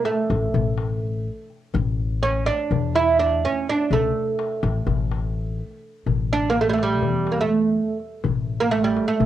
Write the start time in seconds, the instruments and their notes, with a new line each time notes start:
0.05 oud A3, darbuka tek
0.30 upright bass A1, darbuka tek
0.54 upright bass A1, darbuka dum
0.78 darbuka tek
1.50 darbuka ka
1.74 upright bass A1, darbuka dum
2.23 oud C#4, darbuka tek
2.46 oud D4, darbuka tek
2.71 upright bass E2, darbuka dum
2.95 oud E4, darbuka tek
3.19 oud D4
3.45 oud C#4
3.69 oud D4
3.90 upright bass C#2, oud A3, darbuka dum
4.16 darbuka ka
4.39 darbuka tek
4.63 upright bass A1, darbuka tek
4.86 upright bass A1, darbuka dum
5.12 darbuka tek
5.59 darbuka ka
5.71 darbuka ka
6.06 upright bass A1, darbuka dum
6.33 oud D4
6.50 oud A#3
6.55 darbuka tek
6.61 oud A3
6.70 oud G3
6.74 oud A3
6.79 darbuka tek
6.83 oud G3
7.02 upright bass E2, darbuka dum
7.27 darbuka tek
7.32 oud A#3
7.41 oud A3
7.99 darbuka ka
8.24 upright bass A1, darbuka dum
8.60 oud A#3
8.71 oud A3, darbuka tek
8.84 oud G3
8.97 darbuka tek
9.08 oud A3
9.20 upright bass A1, darbuka dum